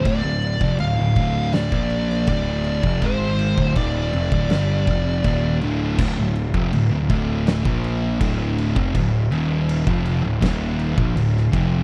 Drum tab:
CC |x-x-x-x-x-x-x-x-|x-x-x-x-x-x-x-x-|x-x-x-x-x-x-x-x-|x-x-x-x-x-x-x-x-|
SD |--------o--o----|--------o-------|--------o-------|--------o----o--|
BD |o--o--o--o--o--o|o--oo--o--o-o---|o--o--o--o--o--o|o----o--o--o--o-|